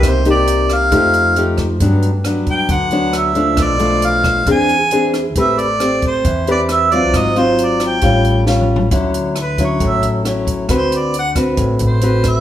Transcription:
<<
  \new Staff \with { instrumentName = "Harmonica" } { \time 4/4 \key a \dorian \tempo 4 = 135 c''8 d''4 f''2 r8 | r4. g''8 fis''4 e''4 | d''4 f''4 gis''4. r8 | e''8 d''4 c''4 d''8 e''8 d''8 |
ees''8 c''8 d''8 g''4. r4 | \key d \major r4 b'8 cis''8 e''8 r4. | c''8 d''8 fis''8 r4 c''4 e''8 | }
  \new Staff \with { instrumentName = "Nylon-string guitar" } { \time 4/4 \key a \dorian << { <bes ees' g'>8 <bes ees' g'>4. <a ees' g'>4 <a ees' g'>8 r8 | <fis b d'>8 r8 <fis b d'>4. <fis b d'>4 <f a d'>8~ | <f a d'>8 <f a d'>4. <c' d' gis'>8 r8 <c' d' gis'>8 r8 | <c' g' b'>8 r8 <c' g'>4. <c' g' b'>4 <fis c' f'>8~ |
<fis c' f'>8 <fis c' f'>4. <g cis' eis'>4 <g cis' eis'>4 | \key d \major <fis cis' e'>4 r8 <fis cis' e'>4. <fis cis' e'>4 | <c' fis' b'>4 r8 <c' fis' b'>4. <c' fis' b'>4 | } \\ { c2 f2 | g,2 d2 | b,2 e2 | a2 e2 |
aes,2 a,2 | d2 a,2 | d2 a,2 | } >> }
  \new Staff \with { instrumentName = "Upright bass" } { \clef bass \time 4/4 \key a \dorian c,2 f,2 | g,2 d,2 | b,,2 e,2 | a,,2 e,2 |
aes,,2 a,,2 | \key d \major d,2 a,,8 a,,4. | d,2 a,,8 a,,4. | }
  \new DrumStaff \with { instrumentName = "Drums" } \drummode { \time 4/4 <hh bd ss>8 hh8 hh8 <hh ss>8 <hh bd>8 hh8 hh8 <hh bd ss>8 | <hh bd>8 hh8 <hh ss>8 <hh bd>8 <hh bd>8 hh8 <hh ss>8 hh8 | <hh bd ss>8 hh8 hh8 <hh bd ss>8 <hh bd>8 hh8 hh8 <hh ss>8 | <hh bd>8 hh8 <hh ss>8 <hh bd>8 <hh bd>8 hh8 <hh ss>8 hh8 |
<hh bd ss>8 hh8 hh8 <hh ss>8 <hh bd>8 hh8 \tuplet 3/2 { sn8 toml8 tomfh8 } | <hh bd>8 hh8 <hh ss>8 <hh bd>8 <hh bd>8 hh8 <hh ss>8 <hh bd>8 | <hh bd ss>8 hh8 hh8 <hh bd ss>8 <hh bd>8 hh8 hh8 <hh bd ss>8 | }
>>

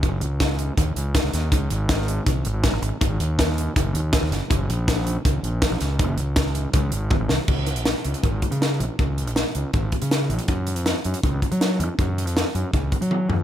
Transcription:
<<
  \new Staff \with { instrumentName = "Fingered electric bass" } { \clef bass \time 4/4 \key des \major \tempo 4 = 161 ges,,8 des,4. ees,8 des,8. des,16 ees,8 | des,8 aes,,4. c,8 aes,,8. aes,,16 aes,,16 r16 | aes,,8 ees,4. ges,,8 ees,8. ees,16 ges,,16 r16 | ges,,8 bes,,4. des,8 bes,,8. bes,,16 des,8 |
ges,,8 des,4. des,8 aes,,8. aes,,16 c,16 r16 | des,8. bes,,8 r16 des,16 r16 aes,,8 r16 des8. bes,,16 r16 | des,8. bes,,8 r16 des,16 r16 aes,,8 r16 des8. bes,,16 r16 | ges,8. f,8 r16 ges,16 r16 des,8 r16 ges8. f,16 r16 |
ges,8. f,8 r16 ges,16 r16 des,8 r16 ges8. f,16 r16 | }
  \new DrumStaff \with { instrumentName = "Drums" } \drummode { \time 4/4 <hh bd>8 hh8 <hh bd sn>8 hh8 <hh bd>8 hh8 <hh bd sn>8 <hh sn>8 | <hh bd>8 hh8 <hh bd sn>8 hh8 <hh bd>8 hh8 <hh bd sn>8 hh8 | <hh bd>8 hh8 <hh bd sn>8 hh8 <hh bd>8 hh8 <hh bd sn>8 <hh sn>8 | <hh bd>8 hh8 <hh bd sn>8 hh8 <hh bd>8 hh8 <hh bd sn>8 <hh sn>8 |
<hh bd>8 hh8 <hh bd sn>8 hh8 <hh bd>8 hh8 <bd tommh>8 sn8 | <cymc bd>8 hh16 hh16 <hh sn>8 hh16 hh16 <hh bd>8 <hh bd>16 hh16 <hh sn>8 hh8 | <hh bd>8 hh16 hh16 <hh sn>8 hh8 <hh bd>8 <hh bd>16 hh16 <hh sn>8 hh16 hh16 | <hh bd>8 hh16 hh16 <hh sn>8 hh16 hh16 <hh bd>8 <hh bd>16 hh16 <hh sn>8 hh8 |
<hh bd>8 hh16 hh16 <hh sn>8 hh8 <hh bd>8 <hh bd>16 hh16 tommh8 tomfh8 | }
>>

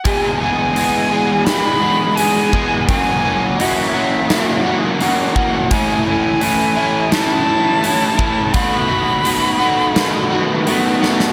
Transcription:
<<
  \new Staff \with { instrumentName = "Flute" } { \time 4/4 \key e \major \tempo 4 = 85 gis''8 gis''4. b''4 gis''4 | gis''4 e''2 r8 fis''8 | gis''8 gis''4. a''2 | b''2. r4 | }
  \new Staff \with { instrumentName = "Overdriven electric guitar" } { \time 4/4 \key e \major <e, b, e gis b gis'>8 <e gis b gis'>8 <e gis b gis'>8 <e gis b gis'>8 <e, b, e gis b gis'>8 <e gis b gis'>8 <e gis b gis'>8 <e gis b gis'>8 | <fis, cis e ais cis' fis'>8 <e ais cis' fis'>8 <e ais cis' fis'>8 <e ais cis' fis'>8 <fis, cis e ais cis' fis'>8 <e ais cis' fis'>8 <e ais cis' fis'>8 <e ais cis' fis'>8 | <a, e a cis' e'>8 <a cis' e'>8 <e a cis' e'>8 <a cis' e'>8 <a, e a cis' e'>8 <a cis' e'>8 <e a cis' e'>8 <a cis' e'>8 | <b, dis a b fis'>8 <a b fis'>8 <dis a b fis'>8 <a b fis'>8 <b, dis a b fis'>8 <a b fis'>8 <dis a b fis'>8 <a b fis'>8 | }
  \new DrumStaff \with { instrumentName = "Drums" } \drummode { \time 4/4 <hho bd>4 hho4 <hho sn>4 hho8 bd8 | <hho bd>4 hho4 <hho sn>4 hho8 bd8 | <hho bd>4 hho4 <hho sn>4 hho8 bd8 | <hho bd>4 hho4 <hho sn>4 hho8 sn16 sn16 | }
>>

